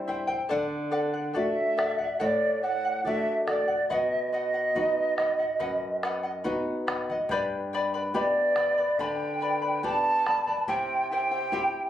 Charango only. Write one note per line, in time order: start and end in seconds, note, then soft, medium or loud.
0.08 0.27 E4 medium
0.08 0.27 C5 medium
0.08 0.29 E5 medium
0.08 0.26 G5 medium
0.27 0.48 E4 medium
0.27 0.49 C5 medium
0.27 0.49 G5 medium
0.49 0.90 A4 medium
0.49 0.90 D5 medium
0.49 0.91 F#5 medium
0.91 1.13 A4 medium
0.91 1.13 D5 medium
0.91 1.12 F#5 medium
1.14 1.33 D5 soft
1.14 1.33 F#5 soft
1.33 1.76 A4 medium
1.33 1.77 D5 medium
1.33 1.77 F#5 medium
1.77 1.99 A4 medium
1.77 1.99 D5 medium
1.77 1.97 F#5 medium
1.98 2.19 D5 soft
1.98 2.19 F#5 soft
2.20 2.62 A4 medium
2.20 2.62 D5 medium
2.20 2.62 F#5 medium
2.63 2.84 A4 soft
2.63 2.84 D5 medium
2.63 2.83 F#5 medium
2.85 3.04 D5 soft
2.85 3.05 F#5 medium
3.04 3.46 A4 soft
3.04 3.47 D5 medium
3.04 3.47 F#5 medium
3.47 3.68 A4 soft
3.47 3.69 D5 medium
3.47 3.67 F#5 medium
3.68 3.90 D5 soft
3.68 3.90 F#5 soft
3.90 4.31 B4 medium
3.90 4.32 D#5 medium
3.90 4.33 F#5 medium
4.32 4.54 B4 medium
4.32 4.54 D#5 medium
4.32 4.53 F#5 medium
4.54 4.75 D#5 soft
4.54 4.75 F#5 medium
4.76 5.18 B4 medium
4.76 5.18 D#5 medium
4.76 5.19 F#5 medium
5.19 5.39 B4 medium
5.19 5.40 D#5 medium
5.19 5.38 F#5 medium
5.39 5.59 D#5 soft
5.39 5.60 F#5 soft
5.59 6.02 B4 medium
5.59 6.02 D#5 medium
5.59 6.03 F#5 medium
6.03 6.24 B4 medium
6.03 6.23 D#5 medium
6.03 6.22 F#5 medium
6.23 6.44 D#5 soft
6.23 6.45 F#5 medium
6.44 6.86 B4 medium
6.44 6.87 D#5 medium
6.44 6.87 F#5 medium
6.87 7.08 B4 medium
6.87 7.09 D#5 medium
6.87 7.08 F#5 medium
7.10 7.31 D#5 medium
7.10 7.30 F#5 medium
7.31 7.73 G4 medium
7.31 7.73 B4 medium
7.31 7.73 D5 medium
7.31 7.72 G5 medium
7.31 7.73 B5 medium
7.73 7.94 B4 medium
7.73 7.94 D5 medium
7.73 7.94 G5 medium
7.73 7.93 B5 medium
7.94 8.14 B4 soft
7.94 8.14 D5 soft
7.94 8.14 B5 medium
8.15 8.56 B4 medium
8.15 8.56 D5 medium
8.15 8.55 G5 medium
8.15 8.57 B5 medium
8.56 8.78 B4 medium
8.56 8.77 D5 medium
8.56 8.77 G5 medium
8.56 8.76 B5 medium
8.78 8.99 B4 soft
8.78 8.99 D5 soft
8.78 8.99 B5 soft
9.00 9.42 G4 medium
9.00 9.40 B4 medium
9.00 9.41 D5 medium
9.00 9.39 G5 medium
9.00 9.41 B5 medium
9.41 9.62 B4 medium
9.41 9.61 D5 medium
9.41 9.62 G5 medium
9.41 9.61 B5 medium
9.62 9.83 B4 soft
9.62 9.84 D5 soft
9.62 9.83 B5 soft
9.83 10.25 B4 medium
9.83 10.25 D5 medium
9.83 10.24 G5 soft
9.83 10.25 B5 medium
10.25 10.47 B4 soft
10.25 10.47 D5 soft
10.25 10.47 G5 soft
10.25 10.46 B5 medium
10.47 10.69 B4 soft
10.47 10.69 D5 soft
10.47 10.68 B5 medium
10.68 11.11 E4 medium
10.68 11.10 G4 medium
10.68 11.11 C5 medium
10.68 11.11 E5 medium
10.68 11.11 G5 medium
11.12 11.32 E4 medium
11.12 11.31 C5 medium
11.12 11.32 E5 medium
11.12 11.30 G5 medium
11.31 11.52 E4 soft
11.31 11.53 C5 medium
11.31 11.53 G5 medium
11.53 11.90 E4 medium
11.53 11.90 C5 medium
11.53 11.90 E5 medium
11.53 11.90 G5 medium